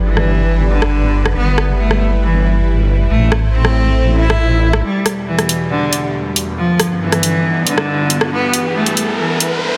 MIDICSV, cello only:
0, 0, Header, 1, 2, 480
1, 0, Start_track
1, 0, Key_signature, 1, "minor"
1, 0, Tempo, 434783
1, 1504, Time_signature, 4, 2, 24, 8
1, 10787, End_track
2, 0, Start_track
2, 0, Title_t, "Cello"
2, 0, Program_c, 0, 42
2, 65, Note_on_c, 0, 52, 86
2, 690, Note_off_c, 0, 52, 0
2, 785, Note_on_c, 0, 50, 88
2, 1410, Note_off_c, 0, 50, 0
2, 1504, Note_on_c, 0, 59, 92
2, 1755, Note_off_c, 0, 59, 0
2, 1984, Note_on_c, 0, 57, 84
2, 2235, Note_off_c, 0, 57, 0
2, 2463, Note_on_c, 0, 52, 78
2, 2715, Note_off_c, 0, 52, 0
2, 3423, Note_on_c, 0, 57, 85
2, 3675, Note_off_c, 0, 57, 0
2, 3903, Note_on_c, 0, 60, 85
2, 4530, Note_off_c, 0, 60, 0
2, 4623, Note_on_c, 0, 64, 92
2, 5249, Note_off_c, 0, 64, 0
2, 5343, Note_on_c, 0, 55, 94
2, 5595, Note_off_c, 0, 55, 0
2, 5824, Note_on_c, 0, 52, 82
2, 6075, Note_off_c, 0, 52, 0
2, 6303, Note_on_c, 0, 50, 87
2, 6555, Note_off_c, 0, 50, 0
2, 7263, Note_on_c, 0, 53, 88
2, 7515, Note_off_c, 0, 53, 0
2, 7742, Note_on_c, 0, 52, 95
2, 8369, Note_off_c, 0, 52, 0
2, 8463, Note_on_c, 0, 50, 93
2, 9089, Note_off_c, 0, 50, 0
2, 9182, Note_on_c, 0, 59, 103
2, 9434, Note_off_c, 0, 59, 0
2, 9663, Note_on_c, 0, 57, 89
2, 9915, Note_off_c, 0, 57, 0
2, 10143, Note_on_c, 0, 52, 88
2, 10394, Note_off_c, 0, 52, 0
2, 10787, End_track
0, 0, End_of_file